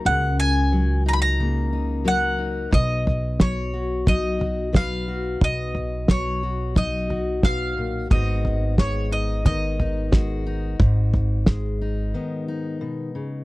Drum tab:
SD |--------|--o---o-|--o---o-|--o---o-|
FT |--------|oo--oo--|oo--oo--|oo--oo--|
BD |--------|o-o-o-o-|o-o-o-o-|o-o-o-o-|

SD |--o-----|
FT |oo------|
BD |o-o-----|